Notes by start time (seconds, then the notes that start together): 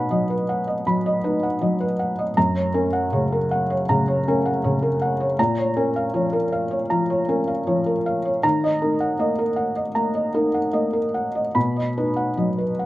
Already playing: B2 D#4 B4 D#5 F#5 B5
0.11 F#3 D#5
0.30 B4
0.49 F#5
0.68 D#5
0.86 F#3 B5
1.06 D#5
1.24 D#4 B4
1.43 F#5
1.61 F#3 D#5
1.80 B4
1.99 F#5
2.19 D#5
2.37 F#2 A#5
2.55 C#5
2.74 C#4 A#4
2.93 F#5
3.12 C#3 C#5
3.32 A#4
3.51 F#5
3.70 C#5
3.89 C#3 A#5
4.08 C#5
4.28 C#4 A#4
4.46 F#5
4.64 C#3 C#5
4.82 A#4
5.02 F#5
5.20 C#5
5.39 A#2 A#5
5.58 C#5
5.77 C#4 A#4
5.96 F5
6.14 F3 C#5
6.33 A#4
6.52 F5
6.71 C#5
6.90 F3 A#5
7.10 C#5
7.28 C#4 A#4
7.48 F5
7.67 F3 C#5
7.86 A#4
8.06 F5
8.25 C#5
8.43 D#3 A#5
8.64 D#5
8.82 D#4 A#4
9.00 F#5
9.19 A#3 D#5
9.39 A#4
9.56 F#5
9.76 D#5
9.95 A#3 A#5
10.15 D#5
10.34 D#4 A#4
10.54 F#5
10.73 A#3 D#5
10.93 A#4
11.14 F#5
11.35 D#5
11.55 B2 B5
11.76 D#5
11.97 D#4 B4
12.16 F#5
12.37 F#3 D#5
12.58 B4
12.79 F#5